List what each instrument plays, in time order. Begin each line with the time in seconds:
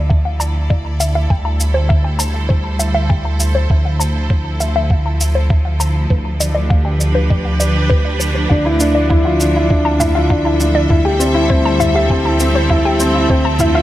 Already playing: detuned saw bass D2, string section F3 E4 A4 D5
0.10 synth arpeggio sound E5, kick
0.25 synth arpeggio sound F5
0.40 synth arpeggio sound A5, shaker
0.70 synth arpeggio sound D5, kick
1.00 synth arpeggio sound E5, shaker
1.15 synth arpeggio sound E5
1.30 detuned saw bass D2, string section G3, synth arpeggio sound G5, kick
1.45 synth arpeggio sound A5
1.53 string section C5
1.60 shaker
1.74 synth arpeggio sound C5
1.89 synth arpeggio sound E5, kick
2.04 synth arpeggio sound G5
2.19 synth arpeggio sound A5, shaker
2.49 synth arpeggio sound C5, kick
2.79 synth arpeggio sound E5, shaker
2.94 synth arpeggio sound E5
3.10 synth arpeggio sound G5, kick
3.25 synth arpeggio sound A5
3.40 shaker
3.55 synth arpeggio sound C5
3.70 detuned saw bass D2, string section F3, synth arpeggio sound E5, kick
3.85 synth arpeggio sound F5
4.00 synth arpeggio sound A5, shaker
4.30 synth arpeggio sound C5, kick
4.60 synth arpeggio sound E5, shaker
4.76 synth arpeggio sound E5
4.90 synth arpeggio sound F5, kick
5.06 synth arpeggio sound A5
5.21 shaker
5.35 synth arpeggio sound C5
5.50 synth arpeggio sound E5, kick
5.65 synth arpeggio sound F5
5.80 synth arpeggio sound A5, shaker
6.10 detuned saw bass D2, synth arpeggio sound B4, kick
6.40 string section D4, synth arpeggio sound D5, shaker
6.55 synth arpeggio sound D5
6.64 string section G4
6.70 synth arpeggio sound F5, kick
6.85 string section B4, synth arpeggio sound G5
7.01 shaker
7.15 synth arpeggio sound B4
7.30 synth arpeggio sound D5, kick
7.45 synth arpeggio sound F5
7.60 synth arpeggio sound D5, shaker
7.90 synth arpeggio sound B4, kick
8.05 synth arpeggio sound D5
8.20 synth arpeggio sound B4, shaker
8.35 synth arpeggio sound B4
8.50 detuned saw bass D2, upright piano D4, synth arpeggio sound F5, kick
8.65 upright piano E4, synth arpeggio sound A5
8.80 upright piano D4, shaker
8.95 synth arpeggio sound D5
9.10 upright piano E4, synth arpeggio sound E5, kick, mid tom
9.23 upright piano F4, string section E5, synth arpeggio sound F5
9.40 upright piano D4, shaker
9.56 upright piano E4, string section A4
9.70 upright piano D4, synth arpeggio sound D5, kick
9.85 synth arpeggio sound A5
10.00 upright piano E4, synth arpeggio sound E5, mid tom, shaker
10.15 upright piano F4, synth arpeggio sound E5
10.30 upright piano D4, synth arpeggio sound F5, kick
10.45 upright piano E4, synth arpeggio sound A5
10.60 upright piano D4, shaker
10.75 synth arpeggio sound D5
10.90 detuned saw bass D2, string section G3, upright piano E4, synth arpeggio sound E5, kick, mid tom
11.05 upright piano G4, synth arpeggio sound G5
11.19 upright piano C4, shaker
11.34 upright piano E4
11.49 string section C4, upright piano C4, synth arpeggio sound C5, kick
11.65 synth arpeggio sound A5
11.80 upright piano E4, synth arpeggio sound E5, mid tom, shaker
11.94 upright piano G4, synth arpeggio sound E5
12.10 upright piano C4, synth arpeggio sound G5, kick
12.25 upright piano E4, synth arpeggio sound A5
12.39 upright piano C4, shaker
12.55 synth arpeggio sound C5
12.70 upright piano E4, synth arpeggio sound E5, kick, mid tom
12.85 upright piano G4, synth arpeggio sound G5
13.00 upright piano C4, shaker
13.15 upright piano E4
13.29 detuned saw bass D2, string section F3, upright piano C4, synth arpeggio sound C5, kick
13.45 synth arpeggio sound A5
13.59 upright piano E4, synth arpeggio sound E5, mid tom, shaker
13.74 upright piano F4, synth arpeggio sound E5